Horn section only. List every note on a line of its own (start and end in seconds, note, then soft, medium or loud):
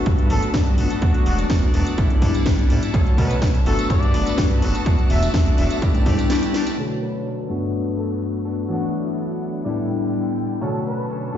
0.30 0.49 A4 medium
1.02 1.39 F#4 medium
2.94 3.13 A4 medium
3.18 3.37 B4 medium
3.66 3.88 A4 medium
3.90 4.38 D5 medium
5.10 5.29 E5 medium
5.58 5.66 E5 medium
5.71 5.78 E5 medium
6.78 6.97 A4 medium
7.02 7.21 B4 medium
7.98 8.17 A4 medium
8.70 9.07 F#4 medium
10.62 10.81 A4 medium
10.86 11.05 B4 medium
11.34 11.37 A4 medium